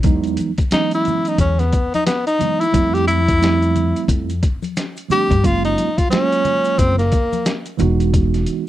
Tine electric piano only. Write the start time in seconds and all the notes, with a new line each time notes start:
0.03 E3 F#3 G#3 B3 D#4
0.71 E3 F#3 G#3 B3 C#4
2.39 E3 F#3 G#3 B3 D#4
2.72 F3 G3 A3 C4 E4
3.39 F3 G3 A3 C4 E4
5.08 F3 G3 A3 C4 D4
5.42 F#3 G#3 A#3 C#4 F4
6.10 F#3 G#3 A3 C#4 F4
6.18 A#3
7.77 E3 G#3 B3 D#4 F#4